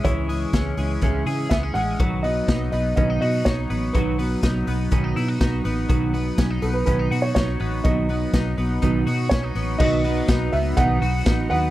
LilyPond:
<<
  \new Staff \with { instrumentName = "Upright piano" } { \time 4/4 \key b \mixolydian \tempo 4 = 123 cis''2 r4 e''8 fis''8~ | fis''8 dis''4 dis''8 dis''8 dis''8 cis''4 | b'4. r2 r8 | r4. a'16 b'16 b'8. cis''16 cis''4 |
dis''2. cis''4 | dis''4 r8 e''8 fis''4. fis''8 | }
  \new Staff \with { instrumentName = "Synth keys" } { \time 4/4 \key b \mixolydian r1 | r1 | r1 | r1 |
r1 | <dis' fis' b'>1 | }
  \new Staff \with { instrumentName = "Clean electric guitar" } { \time 4/4 \key b \mixolydian <e gis cis' gis'>8 gis8 cis'8 gis8 cis'8 gis'8 b16 cis'16 gis8 | fis8 b8 dis'8 b8 cis'16 dis'16 fis'8 dis'8 b8 | fis8 b8 dis'8 b8 cis'16 dis'16 e'16 fis'16 dis'8 b8 | fis8 b8 cis'16 dis'16 b8 cis'16 dis'16 fis'8 dis'8 b8 |
fis8 b8 dis'8 b8 dis'8 fis'8 cis'16 dis'16 b8 | <fis fis'>8 b8 dis'8 b8 dis'8 fis'8 dis'8 b8 | }
  \new Staff \with { instrumentName = "Clean electric guitar" } { \time 4/4 \key b \mixolydian <cis gis cis' e' gis'>8 <cis' e' gis'>8 <gis cis' e' gis'>8 <cis' e' gis'>8 <cis gis cis' e' gis'>8 <cis' e' gis'>8 <gis cis' e' gis'>8 <cis' e' gis'>8 | <b, dis fis b dis' b'>8 <fis b dis' b'>8 <fis b dis' b'>8 <fis b dis' b'>8 <b, dis fis b dis' b'>8 <fis b dis' b'>8 <fis b dis' b'>8 <fis b dis' b'>8 | <b, dis fis b dis' b'>8 <fis b dis' b'>8 <fis b dis' b'>8 <fis b dis' b'>8 <b, dis fis b dis' b'>8 <fis b dis' b'>8 <fis b dis' b'>8 <fis b dis' b'>8 | <b, dis fis b dis' b'>8 <fis b dis' b'>8 <fis b dis' b'>8 <fis b dis' b'>8 <b, dis fis b dis' b'>8 <fis b dis' b'>8 <fis b dis' b'>8 <fis b dis' b'>8 |
<b, dis fis b dis' b'>8 <fis b dis' b'>8 <fis b dis' b'>8 <fis b dis' b'>8 <b, dis fis b dis' b'>8 <fis b dis' b'>8 <fis b dis' b'>8 <fis b dis' b'>8 | <b, dis fis b dis' b'>8 <fis b dis' b'>8 <fis b dis' b'>8 <fis b dis' b'>8 <b, dis fis b dis' b'>8 <fis b dis' b'>8 <fis b dis' b'>8 <fis b dis' b'>8 | }
  \new Staff \with { instrumentName = "Fingered electric bass" } { \clef bass \time 4/4 \key b \mixolydian cis,4 cis,8 cis,8 cis,8 cis8 cis,8 a,,8 | b,,4 b,,8 b,,8 b,,8 b,8 b,,8 a,,8 | b,,4 b,,8 b,,8 b,,8 b,8 b,,8 a,,8 | b,,4 b,,8 b,,8 b,,8 b,8 b,,8 a,,8 |
b,,4 b,,8 b,,8 b,,8 b,8 b,,8 a,,8 | b,,4 b,,8 cis,8 b,,8 b,,8 a,,8 dis,8 | }
  \new DrumStaff \with { instrumentName = "Drums" } \drummode { \time 4/4 <hh bd>8 hho8 <hh bd sn>8 hho8 <hh bd>8 hho8 <hh bd sn>8 hho8 | <hh bd>8 hho8 <hh bd sn>8 hho8 <hh bd>8 hho8 <hh bd sn>8 hho8 | <hh bd>8 hho8 <hh bd sn>8 hho8 <hh bd>8 hho8 <hh bd sn>8 hho8 | <hh bd>8 hho8 <hh bd sn>8 hho8 <hh bd>8 hho8 <hh bd sn>8 hho8 |
<hh bd>8 hho8 <hh bd sn>8 hho8 <hh bd>8 hho8 <hh bd sn>8 hho8 | <cymc bd>8 hho8 <hhp bd cymr sn>8 hho8 <hhp bd cymr>8 hho8 <hhp bd cymr sn>8 hho8 | }
>>